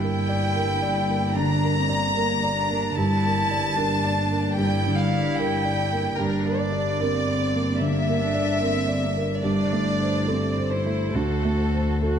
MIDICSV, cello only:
0, 0, Header, 1, 2, 480
1, 0, Start_track
1, 0, Tempo, 806452
1, 1771, Time_signature, 4, 2, 24, 8
1, 5618, Tempo, 863309
1, 7148, End_track
2, 0, Start_track
2, 0, Title_t, "Cello"
2, 0, Program_c, 0, 42
2, 0, Note_on_c, 0, 64, 83
2, 809, Note_on_c, 0, 62, 70
2, 817, Note_off_c, 0, 64, 0
2, 1050, Note_on_c, 0, 60, 68
2, 1059, Note_off_c, 0, 62, 0
2, 1278, Note_off_c, 0, 60, 0
2, 1282, Note_on_c, 0, 58, 72
2, 1521, Note_off_c, 0, 58, 0
2, 1527, Note_on_c, 0, 62, 72
2, 1765, Note_on_c, 0, 64, 83
2, 1774, Note_off_c, 0, 62, 0
2, 2236, Note_on_c, 0, 62, 81
2, 2245, Note_off_c, 0, 64, 0
2, 2720, Note_on_c, 0, 64, 92
2, 2729, Note_off_c, 0, 62, 0
2, 3681, Note_off_c, 0, 64, 0
2, 3685, Note_on_c, 0, 62, 84
2, 4166, Note_on_c, 0, 60, 81
2, 4175, Note_off_c, 0, 62, 0
2, 4643, Note_on_c, 0, 58, 79
2, 4652, Note_off_c, 0, 60, 0
2, 4889, Note_on_c, 0, 62, 74
2, 4898, Note_off_c, 0, 58, 0
2, 5131, Note_on_c, 0, 60, 79
2, 5140, Note_off_c, 0, 62, 0
2, 5376, Note_on_c, 0, 58, 68
2, 5385, Note_off_c, 0, 60, 0
2, 5620, Note_off_c, 0, 58, 0
2, 5622, Note_on_c, 0, 62, 83
2, 6087, Note_on_c, 0, 60, 64
2, 6095, Note_off_c, 0, 62, 0
2, 6327, Note_on_c, 0, 64, 72
2, 6336, Note_off_c, 0, 60, 0
2, 6570, Note_on_c, 0, 66, 71
2, 6578, Note_off_c, 0, 64, 0
2, 7009, Note_off_c, 0, 66, 0
2, 7063, Note_on_c, 0, 66, 73
2, 7148, Note_off_c, 0, 66, 0
2, 7148, End_track
0, 0, End_of_file